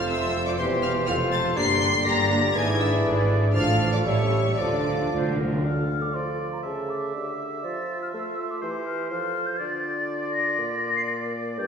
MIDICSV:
0, 0, Header, 1, 12, 480
1, 0, Start_track
1, 0, Key_signature, -1, "minor"
1, 0, Tempo, 494234
1, 572, Time_signature, 2, 2, 24, 8
1, 3448, Tempo, 520833
1, 5368, Tempo, 501672
1, 7288, Tempo, 493016
1, 11211, End_track
2, 0, Start_track
2, 0, Title_t, "Violin section"
2, 0, Program_c, 0, 48
2, 78, Note_on_c, 0, 88, 86
2, 439, Note_off_c, 0, 88, 0
2, 449, Note_on_c, 0, 86, 77
2, 498, Note_off_c, 0, 86, 0
2, 563, Note_on_c, 0, 84, 78
2, 641, Note_off_c, 0, 84, 0
2, 799, Note_on_c, 0, 89, 83
2, 877, Note_off_c, 0, 89, 0
2, 1038, Note_on_c, 0, 89, 92
2, 1116, Note_off_c, 0, 89, 0
2, 1286, Note_on_c, 0, 93, 99
2, 1364, Note_off_c, 0, 93, 0
2, 1522, Note_on_c, 0, 96, 106
2, 1988, Note_off_c, 0, 96, 0
2, 2012, Note_on_c, 0, 94, 93
2, 2482, Note_on_c, 0, 92, 93
2, 2486, Note_off_c, 0, 94, 0
2, 2719, Note_on_c, 0, 88, 81
2, 2723, Note_off_c, 0, 92, 0
2, 2797, Note_off_c, 0, 88, 0
2, 3431, Note_on_c, 0, 89, 88
2, 3766, Note_off_c, 0, 89, 0
2, 3801, Note_on_c, 0, 86, 75
2, 3849, Note_off_c, 0, 86, 0
2, 3907, Note_on_c, 0, 85, 77
2, 4385, Note_on_c, 0, 86, 69
2, 4388, Note_off_c, 0, 85, 0
2, 4879, Note_off_c, 0, 86, 0
2, 11211, End_track
3, 0, Start_track
3, 0, Title_t, "Flute"
3, 0, Program_c, 1, 73
3, 0, Note_on_c, 1, 84, 63
3, 558, Note_off_c, 1, 84, 0
3, 577, Note_on_c, 1, 84, 63
3, 1042, Note_off_c, 1, 84, 0
3, 1054, Note_on_c, 1, 84, 73
3, 1531, Note_on_c, 1, 82, 68
3, 1546, Note_off_c, 1, 84, 0
3, 1992, Note_off_c, 1, 82, 0
3, 1998, Note_on_c, 1, 82, 68
3, 2471, Note_on_c, 1, 83, 69
3, 2486, Note_off_c, 1, 82, 0
3, 3436, Note_off_c, 1, 83, 0
3, 3442, Note_on_c, 1, 81, 66
3, 3882, Note_off_c, 1, 81, 0
3, 3920, Note_on_c, 1, 81, 64
3, 4394, Note_off_c, 1, 81, 0
3, 4405, Note_on_c, 1, 81, 57
3, 5117, Note_off_c, 1, 81, 0
3, 5380, Note_on_c, 1, 89, 67
3, 5733, Note_on_c, 1, 86, 60
3, 5747, Note_off_c, 1, 89, 0
3, 5852, Note_on_c, 1, 84, 61
3, 5866, Note_off_c, 1, 86, 0
3, 6210, Note_off_c, 1, 84, 0
3, 6221, Note_on_c, 1, 82, 57
3, 6273, Note_off_c, 1, 82, 0
3, 6332, Note_on_c, 1, 81, 54
3, 6573, Note_on_c, 1, 86, 63
3, 6587, Note_off_c, 1, 81, 0
3, 7052, Note_off_c, 1, 86, 0
3, 7295, Note_on_c, 1, 93, 66
3, 7629, Note_off_c, 1, 93, 0
3, 7657, Note_on_c, 1, 89, 61
3, 7757, Note_off_c, 1, 89, 0
3, 7763, Note_on_c, 1, 88, 65
3, 8129, Note_on_c, 1, 86, 60
3, 8144, Note_off_c, 1, 88, 0
3, 8241, Note_on_c, 1, 84, 61
3, 8256, Note_off_c, 1, 86, 0
3, 8464, Note_off_c, 1, 84, 0
3, 8470, Note_on_c, 1, 89, 66
3, 8701, Note_off_c, 1, 89, 0
3, 8707, Note_on_c, 1, 89, 73
3, 9064, Note_on_c, 1, 91, 71
3, 9079, Note_off_c, 1, 89, 0
3, 9169, Note_on_c, 1, 93, 83
3, 9184, Note_off_c, 1, 91, 0
3, 9893, Note_off_c, 1, 93, 0
3, 9899, Note_on_c, 1, 94, 82
3, 10498, Note_off_c, 1, 94, 0
3, 10522, Note_on_c, 1, 96, 84
3, 10576, Note_off_c, 1, 96, 0
3, 10630, Note_on_c, 1, 94, 73
3, 10688, Note_off_c, 1, 94, 0
3, 11136, Note_on_c, 1, 91, 79
3, 11211, Note_off_c, 1, 91, 0
3, 11211, End_track
4, 0, Start_track
4, 0, Title_t, "Violin section"
4, 0, Program_c, 2, 48
4, 81, Note_on_c, 2, 76, 78
4, 449, Note_off_c, 2, 76, 0
4, 450, Note_on_c, 2, 74, 64
4, 569, Note_off_c, 2, 74, 0
4, 575, Note_on_c, 2, 72, 73
4, 808, Note_off_c, 2, 72, 0
4, 809, Note_on_c, 2, 77, 73
4, 887, Note_off_c, 2, 77, 0
4, 1054, Note_on_c, 2, 77, 77
4, 1131, Note_off_c, 2, 77, 0
4, 1294, Note_on_c, 2, 81, 76
4, 1523, Note_off_c, 2, 81, 0
4, 1534, Note_on_c, 2, 84, 96
4, 1995, Note_off_c, 2, 84, 0
4, 2016, Note_on_c, 2, 82, 81
4, 2478, Note_off_c, 2, 82, 0
4, 2495, Note_on_c, 2, 80, 81
4, 2573, Note_off_c, 2, 80, 0
4, 2728, Note_on_c, 2, 76, 74
4, 2961, Note_off_c, 2, 76, 0
4, 3448, Note_on_c, 2, 77, 86
4, 3775, Note_off_c, 2, 77, 0
4, 3803, Note_on_c, 2, 74, 70
4, 3850, Note_off_c, 2, 74, 0
4, 3897, Note_on_c, 2, 73, 80
4, 4383, Note_off_c, 2, 73, 0
4, 4384, Note_on_c, 2, 74, 64
4, 4879, Note_off_c, 2, 74, 0
4, 11211, End_track
5, 0, Start_track
5, 0, Title_t, "Oboe"
5, 0, Program_c, 3, 68
5, 0, Note_on_c, 3, 72, 62
5, 548, Note_off_c, 3, 72, 0
5, 574, Note_on_c, 3, 72, 58
5, 1041, Note_off_c, 3, 72, 0
5, 1051, Note_on_c, 3, 72, 62
5, 1525, Note_on_c, 3, 74, 71
5, 1540, Note_off_c, 3, 72, 0
5, 1989, Note_off_c, 3, 74, 0
5, 1994, Note_on_c, 3, 74, 68
5, 2468, Note_off_c, 3, 74, 0
5, 2477, Note_on_c, 3, 74, 69
5, 3428, Note_off_c, 3, 74, 0
5, 3450, Note_on_c, 3, 74, 65
5, 3793, Note_off_c, 3, 74, 0
5, 3924, Note_on_c, 3, 76, 64
5, 4405, Note_on_c, 3, 74, 57
5, 4419, Note_off_c, 3, 76, 0
5, 5132, Note_off_c, 3, 74, 0
5, 5388, Note_on_c, 3, 77, 43
5, 5876, Note_on_c, 3, 74, 42
5, 5890, Note_off_c, 3, 77, 0
5, 6318, Note_off_c, 3, 74, 0
5, 6323, Note_on_c, 3, 76, 45
5, 8204, Note_off_c, 3, 76, 0
5, 8238, Note_on_c, 3, 72, 49
5, 8703, Note_off_c, 3, 72, 0
5, 8709, Note_on_c, 3, 72, 49
5, 9177, Note_off_c, 3, 72, 0
5, 9185, Note_on_c, 3, 74, 55
5, 11084, Note_off_c, 3, 74, 0
5, 11134, Note_on_c, 3, 74, 54
5, 11211, Note_off_c, 3, 74, 0
5, 11211, End_track
6, 0, Start_track
6, 0, Title_t, "Clarinet"
6, 0, Program_c, 4, 71
6, 0, Note_on_c, 4, 69, 55
6, 556, Note_off_c, 4, 69, 0
6, 573, Note_on_c, 4, 67, 67
6, 1038, Note_off_c, 4, 67, 0
6, 1043, Note_on_c, 4, 69, 69
6, 1525, Note_on_c, 4, 67, 64
6, 1540, Note_off_c, 4, 69, 0
6, 1990, Note_off_c, 4, 67, 0
6, 1996, Note_on_c, 4, 67, 74
6, 2489, Note_on_c, 4, 68, 72
6, 2503, Note_off_c, 4, 67, 0
6, 3441, Note_off_c, 4, 68, 0
6, 3447, Note_on_c, 4, 69, 67
6, 3885, Note_off_c, 4, 69, 0
6, 3923, Note_on_c, 4, 69, 62
6, 4267, Note_off_c, 4, 69, 0
6, 4409, Note_on_c, 4, 69, 56
6, 4834, Note_off_c, 4, 69, 0
6, 4892, Note_on_c, 4, 72, 70
6, 5127, Note_on_c, 4, 70, 57
6, 5141, Note_off_c, 4, 72, 0
6, 5368, Note_off_c, 4, 70, 0
6, 5379, Note_on_c, 4, 69, 45
6, 6296, Note_off_c, 4, 69, 0
6, 6343, Note_on_c, 4, 69, 41
6, 6825, Note_on_c, 4, 67, 45
6, 6840, Note_off_c, 4, 69, 0
6, 7294, Note_on_c, 4, 65, 45
6, 7309, Note_off_c, 4, 67, 0
6, 7773, Note_off_c, 4, 65, 0
6, 7781, Note_on_c, 4, 65, 48
6, 8254, Note_on_c, 4, 67, 48
6, 8269, Note_off_c, 4, 65, 0
6, 8728, Note_on_c, 4, 69, 53
6, 8742, Note_off_c, 4, 67, 0
6, 9184, Note_off_c, 4, 69, 0
6, 9190, Note_on_c, 4, 65, 53
6, 10955, Note_off_c, 4, 65, 0
6, 11120, Note_on_c, 4, 70, 57
6, 11211, Note_off_c, 4, 70, 0
6, 11211, End_track
7, 0, Start_track
7, 0, Title_t, "French horn section"
7, 0, Program_c, 5, 60
7, 0, Note_on_c, 5, 60, 65
7, 0, Note_on_c, 5, 65, 58
7, 566, Note_on_c, 5, 67, 65
7, 570, Note_off_c, 5, 65, 0
7, 1037, Note_off_c, 5, 67, 0
7, 1071, Note_on_c, 5, 69, 66
7, 1487, Note_off_c, 5, 60, 0
7, 1535, Note_off_c, 5, 69, 0
7, 1542, Note_on_c, 5, 67, 74
7, 1545, Note_on_c, 5, 62, 78
7, 1975, Note_off_c, 5, 67, 0
7, 1977, Note_off_c, 5, 62, 0
7, 2007, Note_on_c, 5, 67, 72
7, 2010, Note_on_c, 5, 62, 74
7, 2238, Note_off_c, 5, 67, 0
7, 2243, Note_on_c, 5, 65, 71
7, 2476, Note_off_c, 5, 62, 0
7, 2482, Note_off_c, 5, 65, 0
7, 2490, Note_on_c, 5, 62, 79
7, 2492, Note_on_c, 5, 64, 81
7, 3435, Note_off_c, 5, 62, 0
7, 3455, Note_off_c, 5, 64, 0
7, 3464, Note_on_c, 5, 65, 72
7, 3465, Note_on_c, 5, 62, 71
7, 3917, Note_off_c, 5, 65, 0
7, 3918, Note_off_c, 5, 62, 0
7, 3932, Note_on_c, 5, 67, 59
7, 3936, Note_on_c, 5, 57, 60
7, 4401, Note_off_c, 5, 67, 0
7, 4406, Note_off_c, 5, 57, 0
7, 4417, Note_on_c, 5, 57, 65
7, 4419, Note_on_c, 5, 65, 63
7, 5123, Note_off_c, 5, 57, 0
7, 5125, Note_off_c, 5, 65, 0
7, 11211, End_track
8, 0, Start_track
8, 0, Title_t, "Viola section"
8, 0, Program_c, 6, 48
8, 0, Note_on_c, 6, 65, 56
8, 95, Note_on_c, 6, 48, 58
8, 214, Note_off_c, 6, 48, 0
8, 217, Note_on_c, 6, 53, 55
8, 335, Note_off_c, 6, 53, 0
8, 338, Note_on_c, 6, 57, 59
8, 452, Note_on_c, 6, 53, 59
8, 456, Note_off_c, 6, 57, 0
8, 566, Note_off_c, 6, 65, 0
8, 570, Note_on_c, 6, 48, 63
8, 571, Note_on_c, 6, 67, 62
8, 572, Note_off_c, 6, 53, 0
8, 682, Note_off_c, 6, 48, 0
8, 683, Note_on_c, 6, 52, 59
8, 799, Note_on_c, 6, 55, 61
8, 807, Note_off_c, 6, 52, 0
8, 922, Note_on_c, 6, 52, 60
8, 924, Note_off_c, 6, 55, 0
8, 1035, Note_on_c, 6, 48, 64
8, 1039, Note_off_c, 6, 67, 0
8, 1041, Note_on_c, 6, 65, 67
8, 1046, Note_off_c, 6, 52, 0
8, 1152, Note_off_c, 6, 48, 0
8, 1162, Note_on_c, 6, 53, 58
8, 1282, Note_on_c, 6, 57, 61
8, 1284, Note_off_c, 6, 53, 0
8, 1400, Note_on_c, 6, 53, 65
8, 1403, Note_off_c, 6, 57, 0
8, 1510, Note_on_c, 6, 58, 65
8, 1510, Note_on_c, 6, 62, 66
8, 1520, Note_off_c, 6, 65, 0
8, 1521, Note_off_c, 6, 53, 0
8, 1618, Note_off_c, 6, 58, 0
8, 1626, Note_off_c, 6, 62, 0
8, 1628, Note_on_c, 6, 55, 60
8, 1629, Note_on_c, 6, 58, 57
8, 1732, Note_off_c, 6, 58, 0
8, 1738, Note_on_c, 6, 62, 60
8, 1743, Note_on_c, 6, 58, 57
8, 1753, Note_off_c, 6, 55, 0
8, 1851, Note_off_c, 6, 58, 0
8, 1862, Note_on_c, 6, 58, 55
8, 1865, Note_on_c, 6, 55, 61
8, 1868, Note_off_c, 6, 62, 0
8, 1969, Note_off_c, 6, 58, 0
8, 1981, Note_on_c, 6, 58, 61
8, 1982, Note_on_c, 6, 62, 62
8, 1992, Note_off_c, 6, 55, 0
8, 2088, Note_off_c, 6, 58, 0
8, 2100, Note_on_c, 6, 58, 57
8, 2101, Note_off_c, 6, 62, 0
8, 2103, Note_on_c, 6, 55, 57
8, 2221, Note_off_c, 6, 58, 0
8, 2231, Note_off_c, 6, 55, 0
8, 2232, Note_on_c, 6, 58, 62
8, 2234, Note_on_c, 6, 62, 61
8, 2327, Note_off_c, 6, 58, 0
8, 2334, Note_on_c, 6, 55, 61
8, 2339, Note_on_c, 6, 58, 58
8, 2356, Note_off_c, 6, 62, 0
8, 2462, Note_on_c, 6, 50, 67
8, 2464, Note_on_c, 6, 62, 64
8, 2467, Note_off_c, 6, 55, 0
8, 2470, Note_off_c, 6, 58, 0
8, 2583, Note_off_c, 6, 50, 0
8, 2584, Note_off_c, 6, 62, 0
8, 2590, Note_on_c, 6, 52, 59
8, 2591, Note_on_c, 6, 64, 61
8, 2710, Note_on_c, 6, 62, 59
8, 2714, Note_on_c, 6, 50, 60
8, 2716, Note_off_c, 6, 52, 0
8, 2717, Note_off_c, 6, 64, 0
8, 2826, Note_on_c, 6, 52, 61
8, 2834, Note_on_c, 6, 64, 62
8, 2836, Note_off_c, 6, 62, 0
8, 2839, Note_off_c, 6, 50, 0
8, 2950, Note_on_c, 6, 50, 62
8, 2951, Note_on_c, 6, 62, 64
8, 2955, Note_off_c, 6, 52, 0
8, 2959, Note_off_c, 6, 64, 0
8, 3069, Note_off_c, 6, 50, 0
8, 3069, Note_off_c, 6, 62, 0
8, 3072, Note_on_c, 6, 52, 57
8, 3072, Note_on_c, 6, 64, 55
8, 3195, Note_on_c, 6, 62, 61
8, 3196, Note_on_c, 6, 50, 61
8, 3199, Note_off_c, 6, 52, 0
8, 3199, Note_off_c, 6, 64, 0
8, 3322, Note_off_c, 6, 50, 0
8, 3322, Note_off_c, 6, 62, 0
8, 3322, Note_on_c, 6, 64, 57
8, 3323, Note_on_c, 6, 52, 57
8, 3446, Note_off_c, 6, 64, 0
8, 3447, Note_off_c, 6, 52, 0
8, 3448, Note_on_c, 6, 62, 61
8, 3451, Note_on_c, 6, 50, 63
8, 3556, Note_off_c, 6, 62, 0
8, 3558, Note_off_c, 6, 50, 0
8, 3567, Note_on_c, 6, 53, 57
8, 3568, Note_on_c, 6, 65, 57
8, 3683, Note_off_c, 6, 53, 0
8, 3683, Note_off_c, 6, 65, 0
8, 3683, Note_on_c, 6, 50, 53
8, 3685, Note_on_c, 6, 62, 58
8, 3794, Note_on_c, 6, 53, 54
8, 3798, Note_on_c, 6, 65, 52
8, 3800, Note_off_c, 6, 50, 0
8, 3801, Note_off_c, 6, 62, 0
8, 3913, Note_on_c, 6, 64, 58
8, 3914, Note_on_c, 6, 57, 57
8, 3916, Note_off_c, 6, 53, 0
8, 3918, Note_off_c, 6, 65, 0
8, 4028, Note_off_c, 6, 57, 0
8, 4028, Note_off_c, 6, 64, 0
8, 4042, Note_on_c, 6, 55, 51
8, 4043, Note_on_c, 6, 61, 51
8, 4161, Note_off_c, 6, 55, 0
8, 4162, Note_off_c, 6, 61, 0
8, 4165, Note_on_c, 6, 64, 53
8, 4166, Note_on_c, 6, 57, 53
8, 4284, Note_off_c, 6, 57, 0
8, 4284, Note_off_c, 6, 64, 0
8, 4287, Note_on_c, 6, 61, 50
8, 4292, Note_on_c, 6, 55, 49
8, 4406, Note_off_c, 6, 61, 0
8, 4408, Note_on_c, 6, 57, 54
8, 4409, Note_off_c, 6, 55, 0
8, 4413, Note_on_c, 6, 65, 52
8, 4519, Note_off_c, 6, 57, 0
8, 4522, Note_off_c, 6, 65, 0
8, 4535, Note_on_c, 6, 53, 49
8, 4539, Note_on_c, 6, 62, 48
8, 4652, Note_off_c, 6, 53, 0
8, 4654, Note_off_c, 6, 62, 0
8, 4660, Note_on_c, 6, 57, 52
8, 4664, Note_on_c, 6, 65, 52
8, 4775, Note_off_c, 6, 57, 0
8, 4776, Note_off_c, 6, 65, 0
8, 4783, Note_on_c, 6, 62, 47
8, 4784, Note_on_c, 6, 53, 48
8, 4896, Note_off_c, 6, 62, 0
8, 4897, Note_off_c, 6, 53, 0
8, 4900, Note_on_c, 6, 65, 47
8, 4903, Note_on_c, 6, 57, 50
8, 5007, Note_off_c, 6, 65, 0
8, 5009, Note_off_c, 6, 57, 0
8, 5009, Note_on_c, 6, 62, 43
8, 5011, Note_on_c, 6, 53, 46
8, 5131, Note_off_c, 6, 62, 0
8, 5132, Note_off_c, 6, 53, 0
8, 5139, Note_on_c, 6, 65, 48
8, 5142, Note_on_c, 6, 57, 49
8, 5256, Note_off_c, 6, 65, 0
8, 5257, Note_off_c, 6, 57, 0
8, 5259, Note_on_c, 6, 53, 45
8, 5259, Note_on_c, 6, 62, 49
8, 5373, Note_off_c, 6, 62, 0
8, 5374, Note_off_c, 6, 53, 0
8, 11211, End_track
9, 0, Start_track
9, 0, Title_t, "Bassoon"
9, 0, Program_c, 7, 70
9, 0, Note_on_c, 7, 53, 61
9, 549, Note_off_c, 7, 53, 0
9, 576, Note_on_c, 7, 52, 68
9, 1042, Note_on_c, 7, 53, 67
9, 1056, Note_off_c, 7, 52, 0
9, 1523, Note_on_c, 7, 50, 74
9, 1537, Note_off_c, 7, 53, 0
9, 1986, Note_off_c, 7, 50, 0
9, 1992, Note_on_c, 7, 50, 72
9, 2484, Note_on_c, 7, 52, 81
9, 2499, Note_off_c, 7, 50, 0
9, 3278, Note_off_c, 7, 52, 0
9, 3443, Note_on_c, 7, 53, 69
9, 3883, Note_off_c, 7, 53, 0
9, 3915, Note_on_c, 7, 55, 68
9, 4402, Note_on_c, 7, 53, 63
9, 4416, Note_off_c, 7, 55, 0
9, 5130, Note_off_c, 7, 53, 0
9, 5372, Note_on_c, 7, 50, 52
9, 5817, Note_off_c, 7, 50, 0
9, 5853, Note_on_c, 7, 53, 52
9, 6321, Note_off_c, 7, 53, 0
9, 6345, Note_on_c, 7, 49, 51
9, 6814, Note_on_c, 7, 50, 50
9, 6828, Note_off_c, 7, 49, 0
9, 7278, Note_off_c, 7, 50, 0
9, 7284, Note_on_c, 7, 53, 56
9, 7758, Note_off_c, 7, 53, 0
9, 7773, Note_on_c, 7, 57, 51
9, 8237, Note_off_c, 7, 57, 0
9, 8247, Note_on_c, 7, 52, 57
9, 8709, Note_off_c, 7, 52, 0
9, 8718, Note_on_c, 7, 53, 56
9, 9182, Note_off_c, 7, 53, 0
9, 9198, Note_on_c, 7, 50, 61
9, 10119, Note_off_c, 7, 50, 0
9, 10155, Note_on_c, 7, 46, 67
9, 11128, Note_on_c, 7, 43, 64
9, 11143, Note_off_c, 7, 46, 0
9, 11211, Note_off_c, 7, 43, 0
9, 11211, End_track
10, 0, Start_track
10, 0, Title_t, "Timpani"
10, 0, Program_c, 8, 47
10, 3443, Note_on_c, 8, 45, 81
10, 3883, Note_off_c, 8, 45, 0
10, 4405, Note_on_c, 8, 50, 33
10, 4463, Note_off_c, 8, 50, 0
10, 4474, Note_on_c, 8, 50, 35
10, 4538, Note_off_c, 8, 50, 0
10, 4549, Note_on_c, 8, 50, 38
10, 4611, Note_off_c, 8, 50, 0
10, 4622, Note_on_c, 8, 50, 38
10, 4685, Note_off_c, 8, 50, 0
10, 4696, Note_on_c, 8, 50, 40
10, 4753, Note_off_c, 8, 50, 0
10, 4764, Note_on_c, 8, 50, 46
10, 4828, Note_off_c, 8, 50, 0
10, 4839, Note_on_c, 8, 50, 53
10, 4905, Note_off_c, 8, 50, 0
10, 4914, Note_on_c, 8, 50, 63
10, 4974, Note_off_c, 8, 50, 0
10, 4985, Note_on_c, 8, 50, 62
10, 5046, Note_off_c, 8, 50, 0
10, 5057, Note_on_c, 8, 50, 72
10, 5110, Note_off_c, 8, 50, 0
10, 5121, Note_on_c, 8, 50, 80
10, 5182, Note_off_c, 8, 50, 0
10, 5193, Note_on_c, 8, 50, 84
10, 5261, Note_off_c, 8, 50, 0
10, 5272, Note_on_c, 8, 50, 86
10, 5336, Note_off_c, 8, 50, 0
10, 11211, End_track
11, 0, Start_track
11, 0, Title_t, "Cello section"
11, 0, Program_c, 10, 48
11, 0, Note_on_c, 10, 41, 64
11, 571, Note_on_c, 10, 40, 72
11, 573, Note_off_c, 10, 41, 0
11, 1049, Note_off_c, 10, 40, 0
11, 1049, Note_on_c, 10, 41, 69
11, 1519, Note_on_c, 10, 43, 83
11, 1523, Note_off_c, 10, 41, 0
11, 1940, Note_off_c, 10, 43, 0
11, 1990, Note_on_c, 10, 43, 80
11, 2418, Note_off_c, 10, 43, 0
11, 2472, Note_on_c, 10, 44, 82
11, 2902, Note_off_c, 10, 44, 0
11, 2955, Note_on_c, 10, 44, 78
11, 3387, Note_off_c, 10, 44, 0
11, 3443, Note_on_c, 10, 45, 82
11, 3860, Note_off_c, 10, 45, 0
11, 3912, Note_on_c, 10, 45, 72
11, 4343, Note_off_c, 10, 45, 0
11, 4404, Note_on_c, 10, 50, 66
11, 4832, Note_off_c, 10, 50, 0
11, 4893, Note_on_c, 10, 50, 62
11, 5316, Note_off_c, 10, 50, 0
11, 11211, End_track
12, 0, Start_track
12, 0, Title_t, "Double bass section"
12, 0, Program_c, 11, 48
12, 0, Note_on_c, 11, 29, 67
12, 577, Note_off_c, 11, 29, 0
12, 579, Note_on_c, 11, 28, 72
12, 1053, Note_off_c, 11, 28, 0
12, 1058, Note_on_c, 11, 29, 72
12, 1528, Note_off_c, 11, 29, 0
12, 1530, Note_on_c, 11, 31, 79
12, 1946, Note_off_c, 11, 31, 0
12, 2009, Note_on_c, 11, 31, 81
12, 2427, Note_off_c, 11, 31, 0
12, 2488, Note_on_c, 11, 32, 84
12, 2911, Note_off_c, 11, 32, 0
12, 2962, Note_on_c, 11, 32, 78
12, 3391, Note_off_c, 11, 32, 0
12, 3450, Note_on_c, 11, 33, 84
12, 3863, Note_off_c, 11, 33, 0
12, 3923, Note_on_c, 11, 33, 68
12, 4348, Note_off_c, 11, 33, 0
12, 4412, Note_on_c, 11, 38, 68
12, 4836, Note_off_c, 11, 38, 0
12, 4897, Note_on_c, 11, 38, 60
12, 5318, Note_off_c, 11, 38, 0
12, 11211, End_track
0, 0, End_of_file